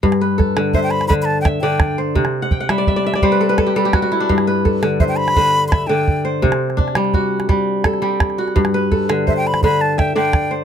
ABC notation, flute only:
X:1
M:12/8
L:1/16
Q:3/8=113
K:G
V:1 name="Flute"
z8 e g b2 b3/2 b/2 a2 g2 g4- g/2 z3/2 | z24 | z8 e g b4- b3/2 c'/2 b2 g4- g/2 z3/2 | z24 |
z8 e g b2 b2 a2 g2 g4- g/2 z3/2 |]